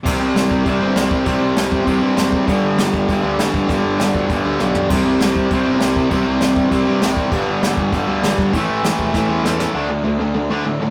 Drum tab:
CC |x-x-x-x-|x-x-x-x-|x-x-x-x-|x-x-x---|
SD |--o---o-|--o---o-|--o---o-|--o---o-|
FT |--------|--------|--------|-------o|
BD |o--oo--o|o--oo--o|o--oo--o|o--oo---|

CC |x-x-x-x-|x-x-x-x-|x-x-x-x-|x-x-----|
SD |--o---o-|--o---o-|--o---o-|--o-o-oo|
FT |--------|--------|--------|--------|
BD |o--oo--o|o--oo--o|o--oo--o|o--oo---|

CC |--------|
SD |--------|
FT |--------|
BD |--------|